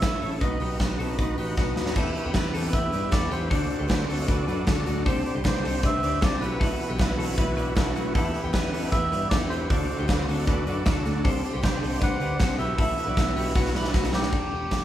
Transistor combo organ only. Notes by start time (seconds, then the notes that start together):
0.02 E4 A4 C#5
0.22 E4 A4 C#5
0.41 D#4 F#4 B4
0.61 D#4 F#4 B4
0.81 D#4 F#4 B4
1.00 D#4 F#4 B4
1.19 D#4 F#4 B4
1.39 D#4 F#4 B4
1.58 D#4 F#4 B4
1.77 D#4 F#4 B4
1.96 E4 G4 B4
2.16 E4 G4 B4
2.35 E4 G4 B4
2.54 E4 G4 A4
2.74 E4 G4 B4
2.92 E4 G4 B4
3.11 E4 G4 B4
3.32 E4 G4 B4
3.51 D4 F#4 A4
3.70 D4 F#4 A4
3.90 D4 F#4 A4
4.10 D4 F#4 A4
4.28 D4 F#4 A4
4.47 D4 F#4 A4
4.66 D4 F#4 A4
4.86 D4 F#4 A4
5.05 D4 G4 C5
5.24 D4 G4 C5
5.44 D4 G4 C5
5.63 D4 G4 C5
5.83 D4 G4 C5
6.02 D4 G4 C5
6.21 D4 G4 C5
6.41 E4 F#4 B4
6.79 E4 F#4 B4
6.98 E4 F#4 B4
7.18 E4 F#4 B4
7.37 E4 F#4 B4
7.56 E4 F#4 B4
7.75 E4 F#4 B4
7.95 E4 F#4 B4
8.14 E4 G4 B4
8.33 E4 G4 B4
8.53 E4 G4 B4
8.73 E4 G4 B4
8.92 E4 G4 B4
9.11 E4 G4 B4
9.31 E4 G4 B4
9.51 E4 G4 B4
9.70 D4 F#4 A4
9.89 D4 F#4 A4
10.09 D4 F#4 A4
10.28 D4 F#4 A4
10.47 D4 F#4 A4
10.67 D4 F#4 A4
10.86 D4 F#4 A4
11.05 D4 F#4 A4
11.24 D4 G4 C5
11.44 D4 G4 C5
11.63 D4 G4 C5
11.83 D4 G4 C5
12.02 D4 G4 C5
12.21 D4 G4 C5
12.40 D4 G4 C5
12.59 E4 F#4 B4
12.98 E4 F#4 B4
13.17 E4 F#4 B4
13.36 E4 F#4 B4
13.54 E4 F#4 B4
13.74 E4 F#4 B4
13.93 E4 F#4 B4
14.13 E4 F#4 B4